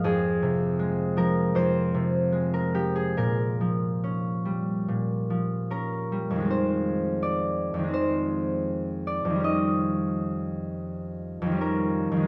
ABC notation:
X:1
M:4/4
L:1/16
Q:1/4=80
K:Bbdor
V:1 name="Harp"
[Af]6 B2 c4- c B G A | B12 B4 | [K:Fm] c4 =d4 c6 d2 | e12 B4 |]
V:2 name="Harp" clef=bass
[F,,F,A,]2 C,2 A,2 F,2 F,,2 C,2 A,2 F,2 | B,,2 F,2 D2 G,2 B,,2 F,2 D2 G,2 | [K:Fm] [F,,E,A,C]8 [F,,E,A,C]8 | [F,,E,G,D]12 [F,,E,G,D]4 |]